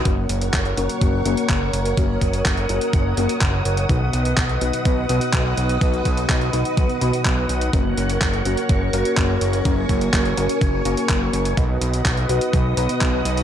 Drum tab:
HH |x-xxxxxxx-xxx-xx|x-xxxxxxx-xxx-xx|x-xxxxxxx-xxx-xx|xxxxxxxxxxxxx-xx|
CP |----x-------x---|----x-------x---|----x-------x---|----x-------x---|
BD |o---o---o---o---|o-o-o---o---o---|o---o---o---o---|o-o-o---o---o---|

HH |x-xxxxxxx-xxx-xx|x-xxxxxxx-xxx-xx|x-xxxxxxx-xxx-xx|
CP |----x-------x---|----x-------x---|----x-------x---|
BD |o---o---o---o---|o-o-o---o---o---|o---o---o---o---|